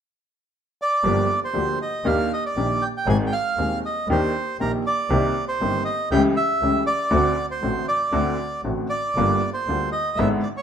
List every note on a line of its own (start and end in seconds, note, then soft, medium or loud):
0.82 1.40 D5 medium
1.03 1.25 G1 medium
1.03 1.25 G2 medium
1.03 1.25 F3 soft
1.03 1.25 A#3 soft
1.03 1.26 D4 soft
1.03 1.26 G4 soft
1.45 1.79 C5 medium
1.53 1.76 D2 soft
1.53 1.76 D3 soft
1.53 1.75 F3 soft
1.53 1.76 A#3 soft
1.53 1.76 D4 soft
1.53 1.76 G4 soft
1.82 2.07 D#5 medium
2.04 2.27 D#2 medium
2.04 2.27 D#3 medium
2.04 2.27 A#3 soft
2.04 2.27 D4 soft
2.04 2.27 G4 medium
2.04 2.32 F5 medium
2.33 2.44 D#5 medium
2.46 2.84 D5 medium
2.56 2.78 A#1 soft
2.56 2.78 A#2 soft
2.56 2.78 D#3 soft
2.56 2.79 A#3 soft
2.56 2.79 D4 soft
2.56 2.78 G4 soft
2.82 2.88 G5 medium
2.97 3.08 G5 medium
3.06 3.28 G#1 medium
3.06 3.29 G#1 medium
3.06 3.29 G#2 medium
3.06 3.28 D#3 medium
3.06 3.28 G#3 soft
3.06 3.29 C4 soft
3.06 3.29 G#4 medium
3.06 3.17 G#5 medium
3.27 3.33 G5 medium
3.32 3.80 F5 medium
3.56 3.80 D#1 soft
3.56 3.79 D#2 soft
3.56 3.79 D#3 soft
3.56 3.80 G#3 soft
3.56 3.80 C4 soft
3.56 3.80 G#4 soft
3.86 4.08 D#5 medium
4.08 4.30 D#2 medium
4.08 4.31 D#2 medium
4.08 4.31 D#3 medium
4.08 4.31 A#3 medium
4.08 4.31 D4 soft
4.08 4.31 G4 medium
4.08 4.57 C5 medium
4.59 4.81 A#1 medium
4.59 4.81 A#1 soft
4.59 4.81 A#2 soft
4.59 4.81 D#3 soft
4.59 4.81 A#3 soft
4.59 4.81 D4 soft
4.59 4.82 G4 soft
4.59 4.72 A#4 medium
4.86 5.45 D5 medium
5.10 5.31 C2 medium
5.10 5.31 C3 medium
5.10 5.31 D#3 medium
5.10 5.31 A#3 soft
5.10 5.31 C4 medium
5.10 5.32 G4 medium
5.48 5.83 C5 medium
5.60 5.82 G1 soft
5.60 5.83 G2 soft
5.60 5.82 D#3 soft
5.60 5.82 A#3 soft
5.60 5.82 C4 soft
5.60 5.83 G4 soft
5.85 6.09 D#5 medium
6.11 6.32 C#2 medium
6.11 6.33 C#2 medium
6.11 6.33 C#3 medium
6.11 6.33 E3 medium
6.11 6.33 A3 medium
6.11 6.33 C#4 medium
6.11 6.33 G4 medium
6.11 6.23 G5 medium
6.36 6.83 E5 medium
6.61 6.83 C#2 medium
6.61 6.84 C#2 soft
6.61 6.84 C#3 soft
6.61 6.83 E3 soft
6.61 6.84 A3 soft
6.61 6.84 C#4 soft
6.61 6.83 G4 soft
6.86 7.46 D5 medium
7.11 7.33 D2 medium
7.11 7.33 D3 medium
7.11 7.33 A3 medium
7.11 7.33 C4 medium
7.11 7.33 F#4 medium
7.51 7.86 C5 medium
7.62 7.84 A1 soft
7.62 7.84 A2 soft
7.62 7.84 D3 soft
7.62 7.85 A3 soft
7.62 7.84 C4 soft
7.62 7.85 F#4 soft
7.88 8.61 D5 medium
8.12 8.35 D2 medium
8.12 8.35 D3 medium
8.12 8.35 A3 soft
8.12 8.35 C4 soft
8.12 8.35 F#4 medium
8.63 8.86 A1 soft
8.63 8.87 A1 soft
8.63 8.87 A2 soft
8.63 8.87 D3 soft
8.63 8.87 A3 soft
8.63 8.87 C4 soft
8.63 8.87 F#4 soft
8.89 9.50 D5 medium
9.15 9.38 G1 medium
9.15 9.38 G2 medium
9.15 9.38 D3 soft
9.15 9.38 G3 soft
9.15 9.39 A#3 soft
9.15 9.39 F4 medium
9.54 9.90 C5 medium
9.67 9.88 D2 soft
9.67 9.89 D2 soft
9.67 9.89 D3 soft
9.67 9.90 G3 soft
9.67 9.90 A#3 soft
9.67 9.90 F4 soft
9.92 10.19 D#5 medium
10.16 10.39 G#1 medium
10.16 10.40 G#1 medium
10.16 10.40 G#2 medium
10.16 10.40 D3 medium
10.16 10.40 G#3 soft
10.16 10.40 B3 soft
10.16 10.40 E4 medium
10.16 10.28 E5 medium
10.43 10.49 D5 medium
10.57 10.62 C#5 medium